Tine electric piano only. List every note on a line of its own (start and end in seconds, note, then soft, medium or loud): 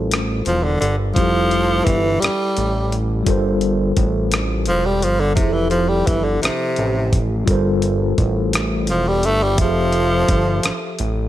0.00 1.10 G3 medium
0.00 1.11 F4 medium
0.00 1.12 A4 medium
0.00 1.13 A#4 medium
0.00 1.14 C5 medium
1.14 3.22 G3 medium
1.14 3.23 E4 soft
1.19 3.24 G4 soft
1.19 3.26 A4 medium
3.23 5.32 G3 medium
3.23 5.32 F4 medium
3.27 5.34 A4 medium
3.27 5.34 A#4 medium
3.27 5.35 C5 medium
5.34 7.42 F3 medium
5.34 7.44 E4 soft
5.39 7.45 G4 soft
5.39 5.46 G#4 soft
5.49 7.47 A4 medium
7.45 9.53 G3 medium
7.45 9.53 F4 medium
7.45 9.54 A4 medium
7.50 9.55 A#4 medium
7.50 9.56 C5 medium
9.55 11.29 F3 medium
9.55 11.29 E5 soft
9.60 11.29 G4 soft
9.60 9.67 G#4 soft
9.69 11.29 A4 medium